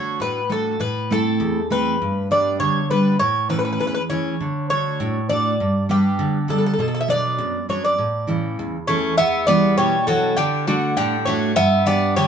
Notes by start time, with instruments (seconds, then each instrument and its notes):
Already playing: steel-string acoustic guitar D3 A3 D4 F#4, bouzouki C#5
0.20 steel-string acoustic guitar A2, bouzouki B4
0.50 steel-string acoustic guitar A3 D4 F#4, bouzouki A4
0.80 steel-string acoustic guitar A2, bouzouki B4
1.11 steel-string acoustic guitar A3 C4 E4, bouzouki A4
1.40 steel-string acoustic guitar E2
1.70 steel-string acoustic guitar A3 C4 E4, bouzouki B4
2.02 steel-string acoustic guitar G2
2.31 steel-string acoustic guitar G3 B3 D4, bouzouki D5
2.60 steel-string acoustic guitar D3, bouzouki C#5
2.90 steel-string acoustic guitar G3 B3 D4, bouzouki B4
3.19 steel-string acoustic guitar A2, bouzouki C#5
3.49 steel-string acoustic guitar E3 A3 C#4, bouzouki B4
3.59 bouzouki B4
3.65 bouzouki B4
3.72 bouzouki B4
3.79 steel-string acoustic guitar E2, bouzouki B4
3.87 bouzouki B4
3.94 bouzouki B4
4.10 steel-string acoustic guitar E3 A3 C#4, bouzouki C#5
4.41 steel-string acoustic guitar D3
4.70 steel-string acoustic guitar A3 D4 F#4, bouzouki C#5
5.00 steel-string acoustic guitar A2
5.29 steel-string acoustic guitar A3 D4 F#4, bouzouki D5
5.60 steel-string acoustic guitar G2
5.89 steel-string acoustic guitar G3 B3 D4, bouzouki G4
6.19 steel-string acoustic guitar D3
6.48 steel-string acoustic guitar G3 B3 D4, bouzouki A4
6.58 bouzouki A4
6.66 bouzouki A4
6.73 bouzouki A4
6.79 steel-string acoustic guitar B2, bouzouki A4
6.88 bouzouki A4
6.94 bouzouki A4
7.01 bouzouki E5
7.08 steel-string acoustic guitar F#3 B3 D4, bouzouki D5
7.38 steel-string acoustic guitar F#2
7.69 steel-string acoustic guitar F#3 B3 D4, bouzouki C#5
7.85 bouzouki D5
7.98 steel-string acoustic guitar A2
8.27 steel-string acoustic guitar C#3 E3 A3
8.59 steel-string acoustic guitar E2
8.87 steel-string acoustic guitar E3 A3 C#4, bouzouki A3 C#5
9.18 steel-string acoustic guitar E2, bouzouki B3 E5
9.47 steel-string acoustic guitar E3 G3 B3, bouzouki B3 D5
9.77 steel-string acoustic guitar B2, bouzouki G3 C#5
10.07 steel-string acoustic guitar E3 B3, bouzouki F#3 A4
10.37 steel-string acoustic guitar D3, bouzouki D3 G4
10.67 bouzouki D3 F#4, steel-string acoustic guitar A3 D4 F#5
10.97 steel-string acoustic guitar A2, bouzouki D3 G4
11.25 bouzouki A3 C#5, steel-string acoustic guitar A3 D4 F#4
11.56 steel-string acoustic guitar G2, bouzouki B3 E5
11.86 steel-string acoustic guitar B3 D4 G4, bouzouki B3 D5
12.16 steel-string acoustic guitar D3, bouzouki G3 C#5